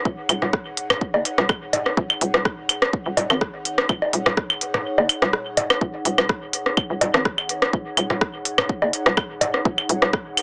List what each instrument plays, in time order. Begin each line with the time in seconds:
Already playing: analog synth pad D#4 G#4 C#5 F#5
0.05 fm bass D#1, kick
0.29 fm bass D#1, open hi-hat, claves
0.42 fm bass D#1, cross-stick, mid tom
0.53 kick, cross-stick
0.77 open hi-hat
0.90 cross-stick, mid tom, claves
1.01 kick
1.14 fm bass F#1, low woodblock
1.25 open hi-hat
1.38 fm bass D#1, cross-stick
1.49 kick, cross-stick, claves
1.73 mid tom, open hi-hat, low woodblock
1.86 cross-stick
1.97 fm bass D#1, kick
2.10 claves
2.21 fm bass D#1, open hi-hat
2.34 fm bass D#1, cross-stick
2.45 kick, cross-stick
2.69 open hi-hat, claves
2.82 cross-stick
2.93 kick
3.06 fm bass D#1
3.17 fm bass D#1, mid tom, open hi-hat, low woodblock
3.30 fm bass G#1, cross-stick, claves
3.41 kick, cross-stick
3.65 open hi-hat
3.78 cross-stick
3.89 fm bass D#1, kick, claves
4.02 low woodblock
4.13 fm bass D#1, open hi-hat
4.26 fm bass D#1, cross-stick, mid tom
4.37 kick, cross-stick
4.50 claves
4.61 open hi-hat
4.74 cross-stick, mid tom
4.98 fm bass F#1, low woodblock
5.09 open hi-hat, claves
5.22 fm bass D#1, cross-stick
5.33 cross-stick
5.57 mid tom, open hi-hat, low woodblock
5.70 cross-stick, claves
5.81 fm bass D#1, kick
6.05 fm bass D#1, open hi-hat
6.18 fm bass D#1, cross-stick, claves
6.29 kick, cross-stick
6.53 open hi-hat
6.66 cross-stick
6.77 kick, claves
6.90 fm bass D#1
7.01 fm bass D#1, mid tom, open hi-hat, low woodblock
7.14 fm bass G#1, cross-stick
7.25 kick, cross-stick
7.38 claves
7.49 open hi-hat
7.62 cross-stick
7.73 fm bass D#1, kick
7.97 fm bass D#1, open hi-hat, claves
8.10 fm bass D#1, cross-stick, mid tom
8.21 kick, cross-stick
8.45 open hi-hat
8.58 cross-stick, mid tom, claves
8.69 kick
8.82 fm bass F#1, low woodblock
8.93 open hi-hat
9.06 fm bass D#1, cross-stick
9.17 kick, cross-stick, claves
9.41 mid tom, open hi-hat, low woodblock
9.54 cross-stick
9.65 fm bass D#1, kick
9.78 claves
9.89 fm bass D#1, open hi-hat
10.02 fm bass D#1, cross-stick
10.13 kick, cross-stick
10.37 open hi-hat, claves